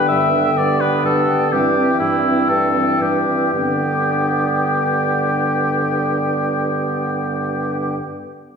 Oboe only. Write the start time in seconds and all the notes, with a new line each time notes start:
0.08 E5
0.57 D5
0.81 B4
1.05 A4
1.52 G4
2.00 E4
2.49 A4
3.02 G4
3.53 G4